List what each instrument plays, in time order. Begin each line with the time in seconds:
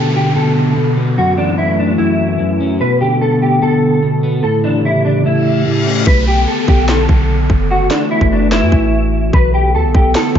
Already playing: clean electric guitar B2 D3 A4, ambient pad D3 B3 A4, downlifter
0.16 clean electric guitar G4
0.35 clean electric guitar B2 A4
0.76 clean electric guitar B2
0.97 clean electric guitar B3
1.17 clean electric guitar F#2 F#4, ambient pad E3 A3 F#4
1.37 clean electric guitar E3 D4
1.58 clean electric guitar E4
1.79 clean electric guitar D4
1.98 clean electric guitar F#2 E4
2.39 clean electric guitar F#2
2.60 clean electric guitar C#4
2.80 clean electric guitar B2 B4, ambient pad D3 B3 A4
3.01 clean electric guitar D3 G4
3.21 clean electric guitar A4
3.42 clean electric guitar G4
3.62 clean electric guitar B2 A4
4.03 clean electric guitar B2
4.23 clean electric guitar B3
4.43 clean electric guitar A2 A4, ambient pad C#3 A3 G4
4.64 clean electric guitar E3 D4
4.85 clean electric guitar E4
5.05 clean electric guitar D4
5.25 clean electric guitar A2 E4, reverse cymbal
5.66 clean electric guitar A2
5.86 clean electric guitar C#4
6.07 808-style bass B1, ambient pad D3 B3 A4, clean electric guitar B4, kick, downlifter
6.27 clean electric guitar G4
6.48 clean electric guitar A4
6.68 808-style bass B1, clean electric guitar G4, kick
6.88 clean electric guitar A4, snare, clap
7.09 808-style bass B1, kick
7.50 808-style bass F#1, kick
7.70 ambient pad E3 A3 F#4, clean electric guitar F#4
7.90 clean electric guitar D4, snare, clap
8.11 clean electric guitar E4
8.21 808-style bass F#1, kick
8.32 clean electric guitar D4
8.51 clean electric guitar E4, snare, clap
8.62 808-style bass F#2
8.72 808-style bass A1, kick
9.33 808-style bass B1, ambient pad D3 B3 A4, clean electric guitar B4, kick
9.54 clean electric guitar G4
9.74 808-style bass D2, clean electric guitar A4
9.84 808-style bass B1
9.95 808-style bass B1, clean electric guitar G4, kick
10.15 clean electric guitar A4, snare, clap
10.35 808-style bass A1, kick